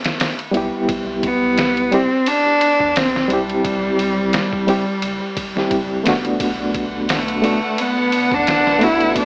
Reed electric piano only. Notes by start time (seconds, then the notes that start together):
0.51 G3 B3 E4
0.57 G4
1.91 G3 C4 E4 G4
3.28 G3 C4 E4
3.33 G4
4.67 G3 C4 E4 G4
5.55 G3 C4 E4 G4
6.03 A3 B3 D4
6.09 F#4
7.42 A3 B3 D4 F#4
8.79 A3 B3 D4
8.84 F#4